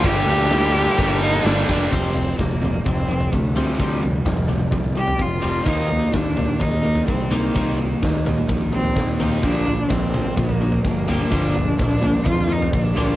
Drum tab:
CC |----------------|x---------------|----------------|----------------|
RD |x-x-x-x-x-x-x-x-|----------------|----------------|----------------|
SD |----oo------o---|----o-----------|----o-----------|----o-----------|
T2 |----------------|------oo--------|------oo--------|------oo--------|
FT |----------------|o-o-ooo-oo-o--o-|o-o-ooo-oo-o--o-|o-o-ooo-oo-o--o-|
BD |o-------o-----o-|o---o---o---o---|o---o---o---o---|o---o---o---o---|

CC |----------------|----------------|----------------|
RD |----------------|----------------|----------------|
SD |----o-------o---|----o-----------|----o-----------|
T2 |------oo----o-o-|------oo--------|------oo--------|
FT |o---ooo-oo-o--o-|o-o-ooo-oo-o--o-|o-o-ooo-oo-o--o-|
BD |o---o---o---o---|o---o---o---o---|o---o---o---o---|